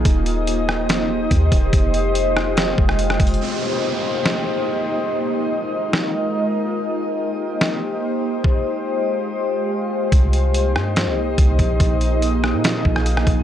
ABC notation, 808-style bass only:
X:1
M:4/4
L:1/16
Q:1/4=143
K:Cm
V:1 name="808-style bass" clef=bass
E,,,12 E,,2 E,,,2 | F,,,8- F,,,2 F,,,4 F,,,2 | z16 | z16 |
z16 | z16 | C,,6 G,,3 C,,3 C,,2 B,,,2 | B,,,6- B,,, B,,3 B,,,4 B,,,2 |]